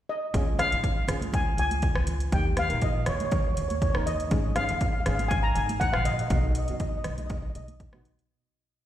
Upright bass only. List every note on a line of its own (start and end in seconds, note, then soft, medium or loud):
0.34 0.70 C#2 medium
0.72 1.07 G#1 medium
1.08 1.56 C#2 medium
1.57 1.94 C#2 medium
1.96 2.31 C#2 medium
2.33 2.69 D#2 medium
2.71 3.06 A#1 medium
3.07 3.54 D#2 medium
3.58 3.93 D#2 medium
3.96 4.30 D#2 medium
4.31 4.68 G#1 medium
4.70 5.05 D#2 medium
5.07 5.54 G#1 medium
5.57 5.92 G#1 medium
5.94 6.29 A#1 medium
6.30 6.67 B1 loud
6.69 7.04 F#2 medium
7.05 7.53 B1 medium
7.55 7.91 B1 medium
7.94 8.28 B1 medium